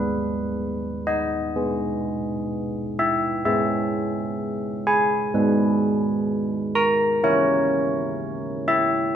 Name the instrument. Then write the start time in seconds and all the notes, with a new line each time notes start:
church bells
Already playing: G#3 B4
1.07 D#5
1.56 B3 G#4
2.99 E5
3.45 G#3 C#4 G#4 E5
4.87 G#5
5.34 G#3 D#4 B4
6.75 A#5
7.23 C#4 E4 A#4 C#5
8.68 E5